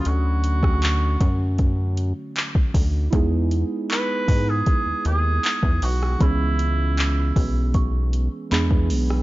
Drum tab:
HH |x-x-x-x-x-x-x-o-|x-x-x-o-x-x-x-o-|x-x-x-o-x-x-x-o-|
CP |----x-------x---|----x-------x---|----x-------x---|
SD |---r------------|---------------r|---------------r|
BD |---o--o-o----oo-|o-----o-o----o--|o-----o-o----o--|